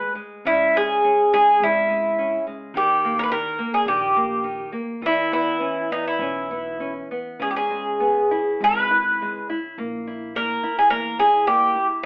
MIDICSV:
0, 0, Header, 1, 4, 480
1, 0, Start_track
1, 0, Tempo, 588235
1, 363, Time_signature, 4, 2, 24, 8
1, 838, Tempo, 569801
1, 4198, Tempo, 598205
1, 7558, Tempo, 564972
1, 9980, End_track
2, 0, Start_track
2, 0, Title_t, "Bouzouki"
2, 0, Program_c, 0, 25
2, 0, Note_on_c, 0, 71, 83
2, 99, Note_off_c, 0, 71, 0
2, 380, Note_on_c, 0, 64, 93
2, 619, Note_off_c, 0, 64, 0
2, 627, Note_on_c, 0, 68, 105
2, 1088, Note_off_c, 0, 68, 0
2, 1098, Note_on_c, 0, 68, 96
2, 1337, Note_off_c, 0, 68, 0
2, 1350, Note_on_c, 0, 64, 84
2, 2025, Note_off_c, 0, 64, 0
2, 2306, Note_on_c, 0, 67, 85
2, 2658, Note_off_c, 0, 67, 0
2, 2662, Note_on_c, 0, 70, 95
2, 2693, Note_off_c, 0, 70, 0
2, 2697, Note_on_c, 0, 71, 78
2, 2751, Note_off_c, 0, 71, 0
2, 2767, Note_on_c, 0, 70, 98
2, 3120, Note_off_c, 0, 70, 0
2, 3124, Note_on_c, 0, 68, 85
2, 3238, Note_off_c, 0, 68, 0
2, 3241, Note_on_c, 0, 67, 80
2, 3923, Note_off_c, 0, 67, 0
2, 4233, Note_on_c, 0, 64, 97
2, 4443, Note_off_c, 0, 64, 0
2, 4452, Note_on_c, 0, 64, 87
2, 4922, Note_off_c, 0, 64, 0
2, 4925, Note_on_c, 0, 63, 86
2, 5025, Note_off_c, 0, 63, 0
2, 5048, Note_on_c, 0, 64, 76
2, 5724, Note_off_c, 0, 64, 0
2, 6126, Note_on_c, 0, 68, 76
2, 6174, Note_off_c, 0, 68, 0
2, 6197, Note_on_c, 0, 67, 59
2, 6236, Note_off_c, 0, 67, 0
2, 6243, Note_on_c, 0, 68, 78
2, 7102, Note_off_c, 0, 68, 0
2, 7105, Note_on_c, 0, 71, 107
2, 7782, Note_off_c, 0, 71, 0
2, 8542, Note_on_c, 0, 70, 102
2, 8899, Note_off_c, 0, 70, 0
2, 8903, Note_on_c, 0, 68, 83
2, 8999, Note_off_c, 0, 68, 0
2, 9003, Note_on_c, 0, 70, 112
2, 9246, Note_off_c, 0, 70, 0
2, 9250, Note_on_c, 0, 68, 84
2, 9482, Note_off_c, 0, 68, 0
2, 9486, Note_on_c, 0, 67, 97
2, 9816, Note_off_c, 0, 67, 0
2, 9980, End_track
3, 0, Start_track
3, 0, Title_t, "Nylon-string guitar"
3, 0, Program_c, 1, 24
3, 0, Note_on_c, 1, 56, 56
3, 114, Note_off_c, 1, 56, 0
3, 124, Note_on_c, 1, 56, 51
3, 357, Note_off_c, 1, 56, 0
3, 370, Note_on_c, 1, 49, 63
3, 611, Note_on_c, 1, 56, 54
3, 835, Note_off_c, 1, 56, 0
3, 851, Note_on_c, 1, 61, 54
3, 1078, Note_off_c, 1, 61, 0
3, 1094, Note_on_c, 1, 56, 55
3, 1321, Note_off_c, 1, 56, 0
3, 1338, Note_on_c, 1, 61, 55
3, 1564, Note_off_c, 1, 61, 0
3, 1565, Note_on_c, 1, 56, 53
3, 1798, Note_off_c, 1, 56, 0
3, 1812, Note_on_c, 1, 61, 53
3, 2042, Note_off_c, 1, 61, 0
3, 2052, Note_on_c, 1, 56, 54
3, 2254, Note_off_c, 1, 49, 0
3, 2281, Note_off_c, 1, 56, 0
3, 2291, Note_on_c, 1, 51, 62
3, 2539, Note_on_c, 1, 58, 56
3, 2755, Note_off_c, 1, 51, 0
3, 2758, Note_off_c, 1, 58, 0
3, 2765, Note_on_c, 1, 51, 52
3, 2988, Note_off_c, 1, 51, 0
3, 2994, Note_on_c, 1, 58, 58
3, 3223, Note_off_c, 1, 58, 0
3, 3248, Note_on_c, 1, 51, 57
3, 3470, Note_off_c, 1, 51, 0
3, 3480, Note_on_c, 1, 58, 58
3, 3707, Note_off_c, 1, 58, 0
3, 3711, Note_on_c, 1, 51, 50
3, 3945, Note_off_c, 1, 51, 0
3, 3952, Note_on_c, 1, 58, 54
3, 4190, Note_off_c, 1, 58, 0
3, 4203, Note_on_c, 1, 52, 55
3, 4441, Note_on_c, 1, 59, 54
3, 4665, Note_off_c, 1, 59, 0
3, 4670, Note_on_c, 1, 61, 50
3, 4897, Note_off_c, 1, 61, 0
3, 4913, Note_on_c, 1, 59, 52
3, 5139, Note_off_c, 1, 59, 0
3, 5153, Note_on_c, 1, 61, 53
3, 5380, Note_off_c, 1, 61, 0
3, 5396, Note_on_c, 1, 59, 56
3, 5623, Note_off_c, 1, 59, 0
3, 5630, Note_on_c, 1, 61, 49
3, 5861, Note_off_c, 1, 61, 0
3, 5879, Note_on_c, 1, 59, 47
3, 6076, Note_off_c, 1, 52, 0
3, 6106, Note_off_c, 1, 59, 0
3, 6108, Note_on_c, 1, 49, 58
3, 6356, Note_on_c, 1, 56, 45
3, 6587, Note_off_c, 1, 56, 0
3, 6594, Note_on_c, 1, 59, 50
3, 6828, Note_off_c, 1, 59, 0
3, 6843, Note_on_c, 1, 64, 56
3, 7076, Note_off_c, 1, 64, 0
3, 7086, Note_on_c, 1, 56, 53
3, 7317, Note_off_c, 1, 56, 0
3, 7319, Note_on_c, 1, 64, 56
3, 7548, Note_off_c, 1, 64, 0
3, 7570, Note_on_c, 1, 56, 53
3, 7801, Note_off_c, 1, 56, 0
3, 7806, Note_on_c, 1, 64, 50
3, 8014, Note_off_c, 1, 49, 0
3, 8041, Note_off_c, 1, 64, 0
3, 8051, Note_on_c, 1, 58, 64
3, 8298, Note_on_c, 1, 64, 54
3, 8524, Note_off_c, 1, 58, 0
3, 8526, Note_off_c, 1, 64, 0
3, 8534, Note_on_c, 1, 58, 49
3, 8762, Note_off_c, 1, 58, 0
3, 8774, Note_on_c, 1, 64, 61
3, 9001, Note_off_c, 1, 64, 0
3, 9005, Note_on_c, 1, 58, 51
3, 9235, Note_off_c, 1, 58, 0
3, 9250, Note_on_c, 1, 64, 58
3, 9478, Note_off_c, 1, 64, 0
3, 9483, Note_on_c, 1, 58, 54
3, 9713, Note_off_c, 1, 58, 0
3, 9726, Note_on_c, 1, 64, 55
3, 9953, Note_off_c, 1, 64, 0
3, 9980, End_track
4, 0, Start_track
4, 0, Title_t, "Upright bass"
4, 0, Program_c, 2, 32
4, 367, Note_on_c, 2, 37, 90
4, 983, Note_off_c, 2, 37, 0
4, 1321, Note_on_c, 2, 32, 94
4, 1947, Note_off_c, 2, 32, 0
4, 2281, Note_on_c, 2, 39, 100
4, 2896, Note_off_c, 2, 39, 0
4, 3224, Note_on_c, 2, 34, 97
4, 3855, Note_off_c, 2, 34, 0
4, 4198, Note_on_c, 2, 40, 85
4, 4811, Note_off_c, 2, 40, 0
4, 5141, Note_on_c, 2, 35, 90
4, 5767, Note_off_c, 2, 35, 0
4, 6108, Note_on_c, 2, 37, 78
4, 6740, Note_off_c, 2, 37, 0
4, 7078, Note_on_c, 2, 32, 94
4, 7697, Note_off_c, 2, 32, 0
4, 8045, Note_on_c, 2, 34, 88
4, 8668, Note_off_c, 2, 34, 0
4, 9004, Note_on_c, 2, 40, 92
4, 9624, Note_off_c, 2, 40, 0
4, 9980, End_track
0, 0, End_of_file